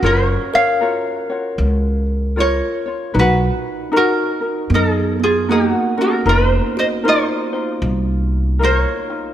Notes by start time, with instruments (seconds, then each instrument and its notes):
0.03 upright bass F#1, ukulele F4 A#4 C#5, kalimba F4
0.54 kalimba A#4, ukulele C#5 F5
0.81 ukulele F4 F#4 A#4 C#5
1.30 ukulele F4 F#4 C#5
1.58 upright bass C#2
2.36 ukulele F4 A#4 C#5, kalimba F4
2.40 ukulele A#4 C#5
2.86 ukulele F4 C#5
3.14 upright bass B1, ukulele D#4 F#4 B4, kalimba D#4
3.19 ukulele F#4 B4
3.92 ukulele D#4 F#4 A#4, kalimba D#4
3.96 ukulele F#4 A#4
4.41 ukulele D#4 A#4
4.70 upright bass F#2, kalimba B3
4.74 ukulele D#4 A4
4.94 ukulele G#4
5.20 kalimba B3, ukulele F4
5.24 ukulele G#4
5.49 kalimba A#3, ukulele D#4 F#4 G4 A#4
5.71 ukulele F#4
5.97 kalimba C#4, ukulele D#4 F#4 A#4
6.02 ukulele A#4
6.26 upright bass F1, ukulele D#4 F4 A#4 B4 C5, kalimba D#4
6.48 ukulele C5
6.77 kalimba F#4, ukulele C5 D#5
7.04 ukulele D#4 F4 A#4 C5, kalimba D#4
7.08 ukulele F4 C5
7.53 ukulele D#4 F4 C5
7.82 upright bass C2
8.59 ukulele D#4 F4 A#4, kalimba F4
8.63 ukulele A#4 C5
8.75 ukulele C#5
9.10 ukulele D#4 F4